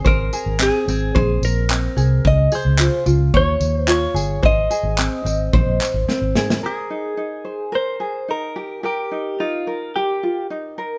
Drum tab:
TB |--x---x---x---x-|--x---x---x---x-|--x---x---x-----|----------------|
CP |----x-------x---|----x-------x---|----x-----x-----|----------------|
SD |----------------|----------------|------------o-oo|----------------|
BD |o-------o-------|o-------o-------|o-------o-------|----------------|

TB |----------------|
CP |----------------|
SD |----------------|
BD |----------------|